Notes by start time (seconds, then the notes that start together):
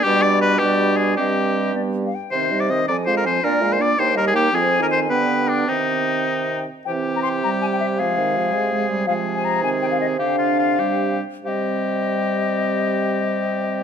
0.04 B2 G3 D4 G4 D5
0.22 D5
0.41 B4
0.59 G3 D4 G4 D5
0.97 G#4
1.17 G2 G3 C4 G4 D#5
1.74 G3 B3 D5
2.05 F5
2.15 G5
2.31 C3 D#3 C4 C5
2.50 G3 D#4 D#5
2.60 D5
2.69 D#3 C4 C5 D#5
2.88 F2 F3 C4 D5 G#5 A#5
3.06 G#3 F4 C5 F5
3.17 A#4
3.25 F3 C4 C5 G#5
3.43 A#2 A#3 D4 A#4 D5
3.61 G#3 F4 F5
3.73 C5
3.79 A#3 D4 D5
3.98 D#2 A#3 D#4 C5 G5
4.15 G3 G4 A#4 D#5
4.27 G#4
4.33 A#3 D#4 G4 G5
4.52 F2 F3 C4 G#4 G#5
4.80 D#3 A#4
4.92 C5
5.08 G2 D3 B3 B4 G5
5.49 D4
5.67 C3 D#3 C4 D#4 G5
6.85 C3 E3 C4 G4 G5
7.16 A#5
7.23 C6
7.44 G3 A#5
7.62 G#5
7.72 G5
7.80 E5
7.97 F3 G#3 G#4 F5
8.18 D#3
8.37 F3
8.54 G#3
8.73 G#3
8.89 G3
9.07 C3 F3 G#3 G#4 F5
9.35 G#5
9.45 A#5
9.62 D#3 C4 G#5
9.82 G5
9.91 F5
10.00 D#5
10.18 D3 D4 G4 F5
10.38 F4
10.59 F4
10.79 G3 D4 G4
11.43 C3 G3 C4 G4 F5
11.48 D#5